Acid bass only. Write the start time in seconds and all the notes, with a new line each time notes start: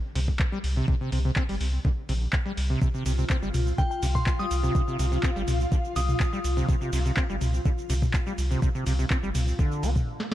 0.15 C3
0.52 G3
0.76 C3
0.88 C3
1.01 C3
1.12 C3
1.25 C3
1.36 C4
1.49 G3
1.85 D3
2.09 C3
2.46 G3
2.70 C3
2.81 C3
2.94 C3
3.06 C3
3.18 C3
3.30 C4
3.42 G3
3.78 D3
4.02 C3
4.39 G3
4.63 C3
4.75 C3
4.88 C3
4.99 C3
5.12 C3
5.24 C4
5.36 G3
5.72 D3
5.96 C3
6.33 G3
6.57 C3
6.69 C3
6.81 C3
6.93 C3
7.05 C3
7.17 C4
7.30 G3
7.65 D3
7.90 C3
8.27 G3
8.51 C3
8.75 C3
8.86 C3
8.99 C3
9.10 C4
9.23 G3
9.59 D3
9.83 C4